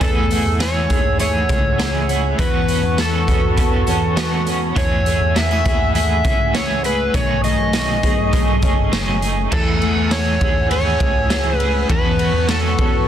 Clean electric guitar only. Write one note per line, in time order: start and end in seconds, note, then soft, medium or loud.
0.00 0.30 E3 medium
0.00 0.31 A3 medium
0.00 0.30 E4 medium
0.00 0.28 G#4 medium
0.30 0.59 A3 soft
0.30 0.59 E4 soft
0.30 0.60 G#4 medium
0.59 0.90 E3 medium
0.59 0.90 A3 medium
0.59 0.89 E4 medium
0.59 0.88 G#4 medium
0.89 1.19 A3 soft
0.89 1.19 E4 soft
0.89 1.19 G#4 medium
1.19 1.49 E3 medium
1.19 1.50 A3 medium
1.19 1.49 E4 medium
1.19 1.48 G#4 medium
1.49 1.78 A3 soft
1.49 1.79 E4 soft
1.49 1.79 G#4 medium
1.78 2.09 E3 medium
1.78 2.09 A3 medium
1.78 2.08 E4 medium
1.78 2.06 G#4 medium
2.08 2.39 A3 medium
2.08 2.39 E4 medium
2.08 2.38 G#4 medium
2.38 2.68 E3 medium
2.38 2.69 B3 medium
2.38 2.68 C#4 medium
2.38 2.66 F#4 loud
2.68 2.97 B3 soft
2.68 2.97 C#4 soft
2.68 2.98 F#4 medium
2.97 3.28 E3 medium
2.97 3.28 B3 medium
2.97 3.27 C#4 medium
2.97 3.26 F#4 medium
3.27 3.57 B3 soft
3.27 3.58 C#4 soft
3.27 3.57 F#4 medium
3.57 3.87 E3 medium
3.57 3.88 B3 medium
3.57 3.87 C#4 medium
3.57 3.85 F#4 medium
3.86 4.15 B3 soft
3.86 4.16 C#4 medium
3.86 4.17 F#4 medium
4.16 4.46 E3 medium
4.16 4.47 B3 medium
4.16 4.46 C#4 medium
4.16 4.44 F#4 loud
4.45 4.75 B3 medium
4.45 4.76 C#4 medium
4.45 4.76 F#4 medium
4.75 5.05 E3 medium
4.75 5.06 A3 medium
4.75 5.05 E4 medium
4.75 5.04 G#4 medium
5.05 5.34 A3 soft
5.05 5.35 E4 soft
5.05 5.35 G#4 medium
5.35 5.65 E3 medium
5.35 5.66 A3 medium
5.35 5.65 E4 medium
5.35 5.63 G#4 medium
5.64 5.94 A3 soft
5.64 5.95 E4 medium
5.64 5.95 G#4 medium
5.94 6.24 E3 medium
5.94 6.25 A3 medium
5.94 6.24 E4 medium
5.94 6.22 G#4 medium
6.24 6.53 A3 soft
6.24 6.54 E4 soft
6.24 6.54 G#4 medium
6.54 6.84 E3 medium
6.54 6.84 A3 medium
6.54 6.84 E4 medium
6.54 6.82 G#4 medium
6.83 7.14 A3 soft
6.83 7.14 E4 soft
6.83 7.14 G#4 medium
7.14 7.44 B2 medium
7.14 7.44 F#3 medium
7.14 7.44 A3 medium
7.14 7.44 D#4 loud
7.14 7.42 G#4 loud
7.43 7.73 A3 soft
7.43 7.73 D#4 soft
7.43 7.73 G#4 medium
7.73 8.03 B2 medium
7.73 8.03 F#3 medium
7.73 8.03 A3 medium
7.73 8.03 D#4 medium
7.73 8.01 G#4 medium
8.02 8.32 A3 soft
8.02 8.33 D#4 soft
8.02 8.32 G#4 medium
8.32 8.62 F#3 medium
8.32 8.63 A3 medium
8.32 8.62 D#4 medium
8.32 8.60 G#4 medium
8.62 8.91 A3 medium
8.62 8.92 D#4 soft
8.62 8.92 G#4 medium
8.92 9.22 B2 medium
8.92 9.22 F#3 medium
8.92 9.22 A3 medium
8.92 9.22 D#4 medium
8.92 9.20 G#4 medium
9.21 9.51 A3 soft
9.21 9.52 D#4 medium
9.21 9.51 G#4 medium
9.51 9.81 E3 medium
9.51 9.82 A3 medium
9.51 9.82 E4 medium
9.51 9.80 G#4 medium
9.82 10.10 A3 soft
9.82 10.11 E4 soft
9.82 10.11 G#4 medium
10.11 10.41 E3 medium
10.11 10.41 A3 medium
10.11 10.41 E4 medium
10.11 10.40 G#4 medium
10.41 10.70 A3 soft
10.41 10.71 E4 soft
10.41 10.71 G#4 medium
10.70 11.00 E3 medium
10.70 11.00 A3 medium
10.70 11.00 E4 medium
10.70 10.98 G#4 medium
10.99 11.29 A3 soft
10.99 11.30 E4 soft
10.99 11.30 G#4 medium
11.30 11.60 E3 medium
11.30 11.60 A3 medium
11.30 11.60 E4 medium
11.30 11.58 G#4 medium
11.59 11.90 A3 soft
11.59 11.90 E4 medium
11.59 11.89 G#4 medium
11.89 12.19 E3 medium
11.89 12.20 B3 medium
11.89 12.20 C#4 medium
11.89 12.18 F#4 medium
12.19 12.48 B3 soft
12.19 12.49 C#4 soft
12.19 12.49 F#4 soft
12.49 12.78 E3 medium
12.49 12.79 B3 medium
12.49 12.79 C#4 medium
12.49 12.77 F#4 medium
12.78 13.08 B3 soft
12.78 13.08 C#4 medium
12.78 13.08 F#4 soft